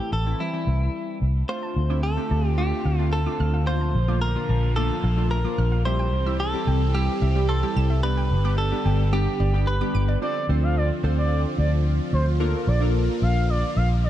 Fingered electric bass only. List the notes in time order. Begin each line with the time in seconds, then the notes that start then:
0.13 A1
0.67 C2
1.22 C2
1.76 D2
2.31 D2
2.85 D2
3.40 D2
3.95 A#1
4.49 A#1
5.04 A#1
5.58 A#1
6.13 C2
6.67 C2
7.22 C2
7.76 C2
8.31 G1
8.86 G1
9.40 G1
9.95 G1
10.49 D2
11.04 D2
11.58 D2
12.13 D2
12.67 A#1
13.22 A#1
13.77 A#1